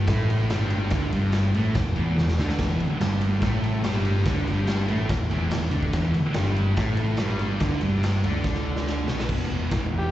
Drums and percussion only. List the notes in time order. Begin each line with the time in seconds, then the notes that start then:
0.07 kick, snare, ride
0.30 ride
0.50 snare, ride
0.70 ride
0.90 kick, snare, ride
1.13 ride
1.32 snare, ride
1.54 ride
1.75 kick, snare, ride
1.96 ride
2.18 snare
2.28 snare
2.38 snare
2.49 snare
2.59 kick, snare, crash
2.80 ride
3.00 snare, ride
3.21 ride
3.42 kick, snare, ride
3.64 ride
3.84 snare, ride
4.05 ride
4.26 kick, snare, ride
4.47 ride
4.67 snare, ride
4.88 ride
5.09 kick, snare, ride
5.31 ride
5.51 snare, ride
5.71 ride
5.83 kick
5.93 kick, snare, ride
6.14 ride
6.34 snare, ride
6.56 ride
6.76 kick, snare, ride
6.97 ride
7.17 snare, ride
7.39 ride
7.60 kick, snare, ride
7.81 ride
8.03 snare, ride
8.24 ride
8.44 kick, snare
8.54 snare
8.76 snare
8.87 snare
9.08 snare
9.19 snare
9.29 kick, crash
9.51 ride
9.71 kick, snare, ride
9.94 ride